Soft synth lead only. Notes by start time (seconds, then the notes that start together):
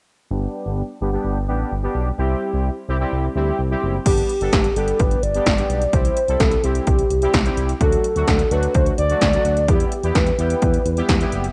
4.06 G4
4.76 A4
5.00 B4
5.23 D5
5.93 C5
6.40 A4
6.64 G4
7.81 A4
8.51 B4
8.75 C5
8.98 D5
9.69 G4
10.15 B4
10.39 B4